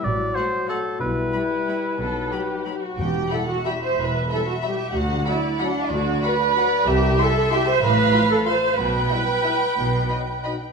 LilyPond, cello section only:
\new Staff \with { instrumentName = "Cello section" } { \clef bass \time 3/4 \key e \minor \tempo 4 = 184 a,4 r2 | b,4 r2 | b,4 r2 | e,4 r2 |
e,4 r2 | d,4 r2 | d,4 r2 | c,4 r2 |
a,4 r2 | b,4 r2 | b,4 r2 | }